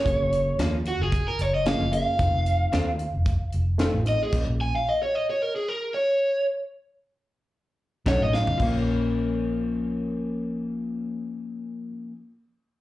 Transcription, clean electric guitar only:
X:1
M:4/4
L:1/8
Q:"Swing 16ths" 1/4=112
K:Bbm
V:1 name="Clean electric guitar"
z2 [F,B,DF] z3 [F,B,DF] z | z2 [E,=A,CF] z3 [E,A,CF] z | z8 | z6 [^F,=A,^D^F] z |
[F,B,D]8- | [F,B,D]8 |]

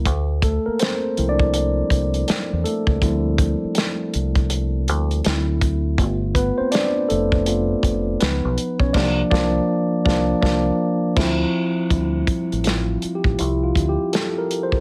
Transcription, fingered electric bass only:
X:1
M:4/4
L:1/16
Q:"Swing 16ths" 1/4=81
K:Dm
V:1 name="Fingered electric bass" clef=bass
D,,3 z3 C,,4 C,,2 z E,, z ^C,, | D,,3 z3 C,,4 D,,2 D,,4 | G,,,3 z3 F,,,4 F,,,2 ^C,, =B,,, z B,,, | C,,2 C,,2 z2 C,,2 C,,2 z2 D,,2 z2 |
D,,2 z A,,,3 z A,,, C,,2 D,, z4 z |]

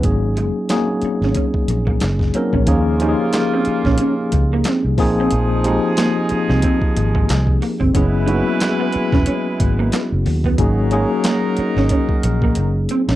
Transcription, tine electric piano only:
X:1
M:4/4
L:1/8
Q:"Swing 16ths" 1/4=91
K:Ab
V:1 name="Tine electric piano"
[_G,B,CDEA]2 [G,B,CDEA]3 z2 [G,B,DEB] | [F,B,DEA] [F,B,DEGA]3 z3 [F,B,CEA]- | [F,B,CEA] [F,B,CEG]3 z4 | [_G,_CD_FA] [G,B,CDF_G]3 z4 |
[_G,B,DEA] [G,B,DEA]3 z4 |]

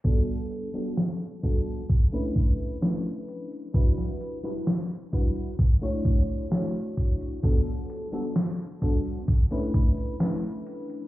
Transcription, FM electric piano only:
X:1
M:4/4
L:1/16
Q:1/4=65
K:Glyd
V:1 name="FM electric piano"
[G,B,DFA]3 [G,B,DFA] z2 [G,B,DFA]2 z [A,CDEB]3 [A,CDEB]4 | [G,DEFB]3 [G,DEFB] z2 [G,DEFB]2 z [A,DEFc]3 [A,DEFc]4 | [G,B,DFA]3 [G,B,DFA] z2 [G,B,DFA]2 z [A,CDEB]3 [A,CDEB]4 |]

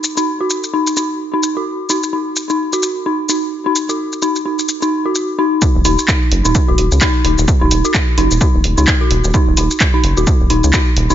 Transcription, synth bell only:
X:1
M:4/4
L:1/16
Q:"Swing 16ths" 1/4=129
K:Ebm
V:1 name="Synth bell"
z E z G z2 E z E z2 E z G z2 | E z E z2 E z G z2 E z E z2 E | z G z2 E z E z2 E z G z2 E z | z2 E z E z2 E z G z2 E z E z |
z E z G z2 E z E z2 E z G z2 | E z E z2 E z G z2 E z E z2 E |]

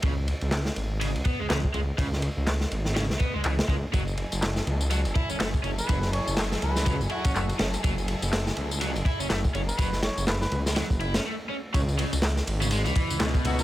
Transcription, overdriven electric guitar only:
X:1
M:4/4
L:1/16
Q:"Swing 16ths" 1/4=123
K:F#m
V:1 name="Overdriven electric guitar" clef=bass
C, z6 z C, z B, G, E, z G, z | C, z6 z C, z B, G, E, z G, z | F, z6 z F, z E C A, z C z | F, z6 z F, z E C A, z C z |
F, z6 z F, z E C A, z C z | F, z6 z F, z E C A, z C z | C, z C, z4 C, G, E,3 B,,4 |]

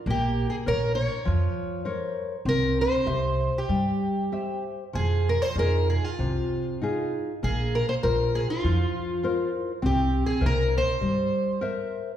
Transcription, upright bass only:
X:1
M:4/4
L:1/8
Q:1/4=99
K:Cphr
V:1 name="Upright bass" clef=bass
B,,,2 B,,,2 F,, z3 | C,,2 C,,2 G,, z3 | F,,2 F,,2 C,, z3 | B,,,2 B,,,2 F,, z3 |
C,,2 C,,2 G,, z3 |]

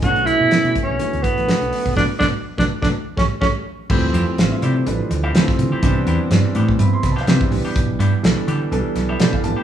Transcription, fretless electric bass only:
X:1
M:4/4
L:1/16
Q:"Swing 16ths" 1/4=124
K:Bm
V:1 name="Fretless electric bass" clef=bass
B,,,3 B,,2 B,, z B,,, z D,, z A,,, z B,,, z B,,, | B,,, z B,,, z2 B,,, z B,,, z2 A,,, z A,,, z3 | [K:Ddor] D,,2 F,, z A,,, z C,2 A,,, z D,,2 D, z D, z | C,,2 E,, z G,, z A,,2 G,, z C,,2 C, z B,,, z |
B,,,2 G,, z B,,, z D,2 B,,, z B,,,2 B,, z A,,, z |]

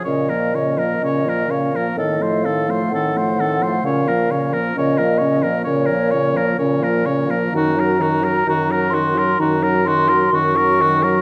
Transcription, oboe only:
X:1
M:4/4
L:1/16
Q:1/4=64
K:Bbm
V:1 name="Oboe"
d B d B d B d B =A c A c A c A c | d B d B d B d B d B d B d B d B | G B G B G B G B G B G B G B G B |]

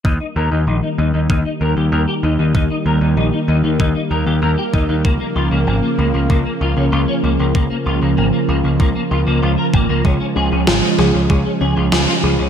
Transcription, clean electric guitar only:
X:1
M:4/4
L:1/16
Q:1/4=96
K:Ebmix
V:1 name="Clean electric guitar"
E E B E E E E E E E B G B G E E | E E B E E E E E E E B G B G E E | B, B, F B, B, B, B, B, B, B, F D F D B, B, | B, B, F B, B, B, B, B, B, B, F B, F B B, B, |
D D A D D D D D D D A F A F D D |]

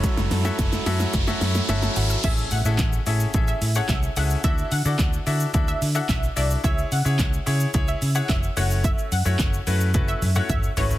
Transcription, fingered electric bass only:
X:1
M:4/4
L:1/16
Q:1/4=109
K:A
V:1 name="Fingered electric bass" clef=bass
z F,,, F,,2 F,,,2 F,,2 F,,,2 F,,2 =G,,,2 ^G,,,2 | A,,,2 A,, A,, A,,,2 A,,2 A,,,2 A,,2 =C,,2 ^C,,2 | D,,2 D, D, D,,2 D,2 D,,2 D,2 B,,,2 =C,,2 | C,,2 C, C, C,,2 C,2 C,,2 C,2 =F,,,2 ^F,,,2- |
F,,,2 F,, F,, F,,,2 F,,2 F,,,2 F,,2 =G,,,2 ^G,,,2 |]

